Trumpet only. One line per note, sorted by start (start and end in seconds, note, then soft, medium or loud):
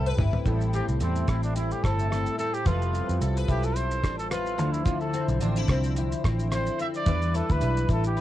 0.00 0.18 A4 loud
0.74 0.86 G4 medium
1.02 1.30 C4 medium
1.29 1.43 E4 medium
1.44 1.55 D4 medium
1.56 1.74 E4 medium
1.72 1.85 G4 medium
1.83 2.37 A4 loud
2.38 2.55 A4 loud
2.54 2.68 G4 medium
2.67 3.21 F4 medium
3.50 3.66 G4 medium
3.64 3.77 A4 medium
3.76 4.17 C5 loud
4.18 4.30 A4 medium
4.31 4.74 F4 medium
4.73 4.86 E4 medium
4.85 5.00 F4 medium
5.00 5.27 A4 medium
6.53 6.78 C5 medium
6.81 6.87 E5 loud
6.96 7.37 D5 loud
7.36 7.53 A4 medium
7.51 7.90 B4 medium
7.91 8.05 A4 medium
8.07 8.21 G4 medium